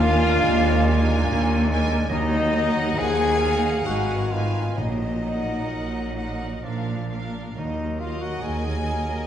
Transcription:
0.00 0.36 D#2 medium
0.00 0.36 D#2 loud
0.00 0.84 D#3 loud
0.00 2.10 D#3 medium
0.00 1.81 G#3 medium
0.00 0.42 A#3 medium
0.00 0.86 D4 medium
0.00 1.65 F4 loud
0.00 0.45 A#4 medium
0.00 0.86 A#4 medium
0.00 2.08 D5 medium
0.00 1.64 F5 loud
0.06 0.87 G#5 medium
0.17 1.54 D4 medium
0.43 1.19 D#2 loud
0.43 1.27 G#3 medium
0.73 1.28 G#4 medium
0.88 1.67 D4 medium
0.88 1.68 A#4 medium
0.88 1.68 G#5 medium
1.02 2.98 A#4 medium
1.26 2.01 D#2 loud
1.26 2.01 D#2 medium
1.26 1.69 A#3 medium
1.26 2.14 G#4 medium
1.55 2.14 D4 medium
1.68 2.08 G#3 medium
1.68 2.09 D4 medium
1.68 2.10 A#4 medium
1.68 2.11 G#5 medium
1.82 2.13 G#3 medium
2.09 2.88 D#2 loud
2.09 2.88 D#2 medium
2.09 3.38 D#3 loud
2.09 3.90 D#3 medium
2.09 2.99 F#3 medium
2.09 2.95 D#4 loud
2.09 3.00 D#4 loud
2.09 3.01 D#5 medium
2.09 3.01 D#5 loud
2.09 2.95 D#5 loud
2.39 5.39 F#3 medium
2.56 3.41 D#4 medium
2.56 3.41 A#4 medium
2.56 3.42 F#5 medium
2.97 3.75 D#2 medium
2.97 3.57 F3 medium
2.97 3.84 G#4 loud
2.97 3.85 G#4 loud
2.97 3.42 F#5 medium
2.97 3.86 G#5 loud
2.97 3.87 G#5 loud
3.29 6.68 F#4 medium
3.41 3.85 D#4 medium
3.41 3.85 A#4 medium
3.41 4.46 F5 medium
3.46 3.87 F#5 medium
3.58 3.90 A#4 medium
3.84 4.66 G#1 medium
3.84 4.66 G#2 medium
3.84 4.81 G#2 medium
3.84 4.77 D#3 medium
3.84 4.29 D#4 medium
3.84 4.31 F#4 medium
3.84 4.32 F#4 medium
3.84 4.29 B4 medium
3.84 4.30 F#5 medium
3.84 4.32 F#5 medium
3.89 4.31 G#5 medium
4.16 4.81 G#3 soft
4.30 4.76 D#4 soft
4.30 4.79 F4 medium
4.30 4.77 F4 medium
4.30 4.76 B4 medium
4.30 4.77 F5 medium
4.30 4.77 G#5 medium
4.46 5.70 D#4 soft
4.46 4.81 B4 soft
4.76 5.60 A#1 medium
4.76 5.60 A#2 medium
4.76 6.62 A#2 medium
4.76 6.14 A#2 medium
4.76 6.64 F#3 medium
4.76 6.64 D#4 medium
4.76 6.61 D#4 medium
4.76 6.65 D#5 medium
4.76 6.60 D#5 medium
4.76 6.61 D#5 medium
5.09 8.99 A#3 soft
5.24 6.15 D#4 soft
5.24 6.15 A#4 soft
5.24 6.16 F#5 medium
5.40 6.68 F#3 soft
5.71 6.53 A#1 medium
5.71 6.53 A#2 medium
5.71 6.32 D#4 soft
6.02 7.26 A#4 soft
6.17 6.63 D#4 soft
6.17 6.63 A#4 soft
6.17 6.63 F#5 soft
6.33 6.67 D#4 soft
6.63 7.46 A#1 medium
6.63 7.60 A#2 medium
6.63 7.46 A#2 medium
6.63 7.23 F3 soft
6.63 7.10 D4 soft
6.63 7.10 A#4 soft
6.63 7.23 D5 soft
6.63 7.09 F5 soft
6.95 7.60 F3 soft
7.10 7.55 D4 soft
7.10 7.56 A#4 soft
7.10 7.55 F5 soft
7.26 7.60 D4 soft
7.26 8.42 A#4 soft
7.55 8.32 D#2 medium
7.55 8.33 D#2 medium
7.55 9.27 D#3 medium
7.55 8.81 D#3 medium
7.55 9.27 F#3 medium
7.55 7.97 D#4 medium
7.55 7.98 D#4 medium
7.55 9.27 A#4 medium
7.55 7.96 D#5 medium
7.55 8.02 D#5 medium
7.87 9.27 F#3 soft
8.00 8.83 A#3 soft
8.00 8.20 F4 medium
8.00 8.22 F4 medium
8.00 8.83 A#4 medium
8.00 8.82 D#5 soft
8.00 8.18 F5 medium
8.00 8.21 F5 medium
8.16 9.27 D#4 soft
8.16 8.38 F#5 medium
8.21 8.43 F#4 medium
8.21 8.44 F#4 medium
8.21 8.43 F#5 medium
8.39 9.16 D#2 medium
8.39 9.27 G#4 medium
8.39 9.27 G#5 medium
8.39 9.26 G#5 medium
8.43 9.17 D#2 medium
8.43 9.27 G#4 medium
8.43 8.99 A#4 soft
8.72 9.27 F#4 soft
8.83 9.27 A#3 soft
8.83 9.27 A#4 soft
8.83 9.27 D#5 soft
9.00 9.27 A#4 soft

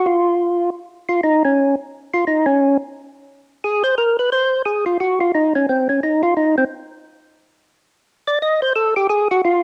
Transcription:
0.06 0.70 F4 medium
1.09 1.21 F4 medium
1.24 1.43 D#4 medium
1.45 1.75 C#4 medium
2.14 2.25 F4 loud
2.27 2.46 D#4 medium
2.46 2.77 C#4 medium
3.64 3.83 G#4 medium
3.84 3.95 C5 loud
3.98 4.17 A#4 medium
4.19 4.30 B4 medium
4.32 4.62 C5 medium
4.65 4.85 G#4 medium
4.86 4.98 F4 medium
5.00 5.19 F#4 medium
5.21 5.32 F4 medium
5.35 5.53 D#4 medium
5.55 5.66 C#4 medium
5.69 5.88 C4 medium
5.89 6.00 C#4 medium
6.03 6.22 D#4 medium
6.23 6.34 F4 medium
6.37 6.56 D#4 medium
6.58 6.64 C4 medium
8.27 8.39 D5 medium
8.42 8.61 D#5 loud
8.62 8.73 C5 medium
8.76 8.94 A4 medium
8.96 9.07 G4 medium
9.09 9.28 G#4 medium
9.31 9.42 F#4 medium
9.45 9.63 F4 medium

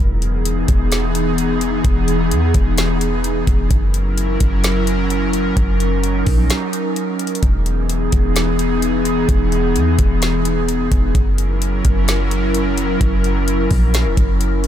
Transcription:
0.00 0.66 E1 loud
0.00 3.67 E3 medium
0.00 3.67 B3 medium
0.00 3.67 D#4 medium
0.00 3.67 G#4 medium
0.22 closed hi-hat medium
0.45 closed hi-hat medium
0.68 1.81 E1 loud
0.68 kick medium
0.68 closed hi-hat medium
0.92 snare loud
0.92 closed hi-hat medium
1.15 closed hi-hat medium
1.38 closed hi-hat medium
1.61 closed hi-hat medium
1.85 2.33 E1 loud
1.85 kick loud
1.85 closed hi-hat medium
2.08 closed hi-hat medium
2.31 2.53 E2 loud
2.31 closed hi-hat medium
2.54 3.44 E1 loud
2.54 kick medium
2.54 closed hi-hat medium
2.78 snare loud
2.78 closed hi-hat medium
3.01 closed hi-hat medium
3.24 closed hi-hat medium
3.47 3.70 E1 loud
3.47 kick loud
3.47 closed hi-hat medium
3.71 4.38 F#1 loud
3.71 7.39 F#3 medium
3.71 7.39 C#4 medium
3.71 5.55 E4 medium
3.71 7.39 A#4 medium
3.71 kick loud
3.71 closed hi-hat medium
3.94 closed hi-hat medium
4.18 closed hi-hat medium
4.40 5.53 F#1 loud
4.40 kick medium
4.40 closed hi-hat medium
4.64 snare loud
4.64 closed hi-hat medium
4.87 closed hi-hat medium
5.10 closed hi-hat medium
5.33 closed hi-hat medium
5.57 6.24 F#1 loud
5.57 7.41 D#4 medium
5.57 kick loud
5.57 closed hi-hat medium
5.80 closed hi-hat medium
6.04 closed hi-hat medium
6.26 6.50 A#1 loud
6.26 kick medium
6.26 open hi-hat medium
6.50 snare loud
6.50 closed hi-hat medium
6.73 closed hi-hat medium
6.96 closed hi-hat medium
7.19 closed hi-hat medium
7.27 closed hi-hat medium
7.35 closed hi-hat medium
7.43 8.10 E1 loud
7.43 11.11 E3 medium
7.43 11.11 B3 medium
7.43 11.11 D#4 medium
7.43 11.11 G#4 medium
7.43 kick loud
7.43 closed hi-hat medium
7.66 closed hi-hat medium
7.89 closed hi-hat medium
8.12 9.25 E1 loud
8.12 kick medium
8.12 closed hi-hat medium
8.36 snare loud
8.36 closed hi-hat medium
8.59 closed hi-hat medium
8.82 closed hi-hat medium
9.05 closed hi-hat medium
9.29 9.77 E1 loud
9.29 kick loud
9.29 closed hi-hat medium
9.52 closed hi-hat medium
9.75 9.97 E2 medium
9.75 closed hi-hat medium
9.99 10.88 E1 loud
9.99 kick medium
9.99 closed hi-hat medium
10.22 snare loud
10.22 closed hi-hat medium
10.45 closed hi-hat medium
10.69 closed hi-hat medium
10.92 11.14 E1 medium
10.92 kick medium
10.92 closed hi-hat medium
11.15 11.82 F#1 loud
11.15 14.67 F#3 medium
11.15 14.67 C#4 medium
11.15 14.67 E4 medium
11.15 14.67 A#4 medium
11.15 kick loud
11.15 closed hi-hat medium
11.38 closed hi-hat medium
11.62 closed hi-hat medium
11.85 12.97 F#1 loud
11.85 kick medium
11.85 closed hi-hat medium
12.08 snare loud
12.08 closed hi-hat medium
12.31 closed hi-hat medium
12.54 closed hi-hat medium
12.78 closed hi-hat medium
13.01 13.68 F#1 loud
13.01 kick loud
13.01 closed hi-hat medium
13.24 closed hi-hat medium
13.48 closed hi-hat medium
13.71 14.07 A#1 loud
13.71 kick medium
13.71 open hi-hat medium
13.94 snare loud
13.94 closed hi-hat medium
14.05 14.17 E1 loud
14.17 14.67 F#1 loud
14.17 kick loud
14.17 closed hi-hat medium
14.41 closed hi-hat medium
14.64 closed hi-hat medium

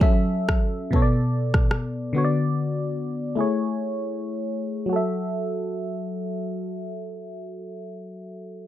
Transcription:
0.00 0.93 F#3 medium
0.00 0.93 C#4 medium
0.00 0.93 A4 medium
0.00 0.94 E5 medium
0.00 kick loud
0.49 kick medium
0.49 cross-stick loud
0.91 2.12 B2 medium
0.91 2.13 B3 medium
0.91 2.14 A4 medium
0.91 kick medium
0.96 1.02 C#5 medium
1.02 2.18 D5 medium
1.54 kick medium
1.54 cross-stick medium
1.71 cross-stick loud
2.13 3.34 D3 medium
2.13 3.35 B3 medium
2.13 3.36 F#4 medium
2.18 2.24 C#5 medium
2.24 3.40 D5 medium
3.35 4.87 A3 medium
3.35 4.88 E4 medium
3.35 4.88 G#4 medium
3.40 4.89 C#5 medium
4.86 8.02 F#3 medium
4.86 8.06 F#4 medium
4.93 8.09 A4 medium
4.93 8.12 E5 medium

